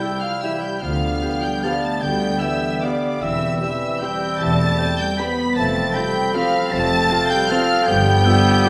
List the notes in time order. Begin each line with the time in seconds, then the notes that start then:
Already playing: C3 G3 C4 E4 C5 E5 G5 G6
0.02 E4 G4 E5
0.12 C5
0.22 F3 E5 F5 F6
0.32 G5
0.42 E3 G3 E4 G4 E5 G5 E6
0.52 C5
0.62 G3 G4 G5 G6
0.72 E4
0.82 D2 D3 F3 G3 B3 F5 F6
0.91 D4
1.01 B3
1.11 G4
1.22 B3 G4 G5
1.32 B4
1.42 G3 G5 G6
1.53 B4
1.62 F3 G3 B3 G4 F5 G5 A5 F6
1.73 B4
1.82 A3 G4 A5 A6
1.92 B3
2.02 D2 D3 G3 B3 G5 G6
2.12 D4
2.21 B3
2.31 G4
2.40 E3 B3 G4 E5 G5 E6
2.52 B4
2.73 B4
2.82 D3 G3 B3 G4 D5 F5 G5 D6
2.93 B4
3.03 G4
3.12 B3
3.21 E1 E2 E3 G3 C4 E5 E6
3.30 E4
3.41 C4
3.50 G4
3.60 E3 G3 C4 G4 E5 E6
3.71 C5
3.81 G5
3.91 C5
4.02 G3 C4 G4 G5 G6
4.11 C5
4.21 G4
4.31 C4
4.39 E1 E2 E3 A3 A5 A6
4.49 E4
4.59 C4
4.69 G4
4.78 C4 G4 G5
4.89 C5
4.98 G3 G5 G6
5.09 C5
5.18 B3 C4 G4 G5 B5 B6
5.29 C5
5.38 G4
5.47 C4
5.56 F1 F2 F3 A3 C4 A5 A6
5.75 F4
5.84 A4
5.94 G3 C4 F4 C5 G5 B5 G6
6.04 F5
6.14 A5
6.34 F3 C4 F4 F5 A5 F6
6.44 F5
6.54 C5
6.63 A4
6.72 F1 F2 F3 A3 C4 A5 A6
6.81 C4
6.90 F4
7.00 A4
7.10 C4 F4 C5 F5
7.20 F5
7.30 G3 G5 G6
7.40 C6
7.50 F3 C4 F4 F5 A5 F6
7.78 A4
7.86 G1 G2 F3 G3 B3 G5 G6
7.96 D3
8.06 B3
8.15 F4
8.25 B3 F4 D5 E5
8.34 B4
8.44 F5
8.55 D6
8.65 B3 F4 D5 F5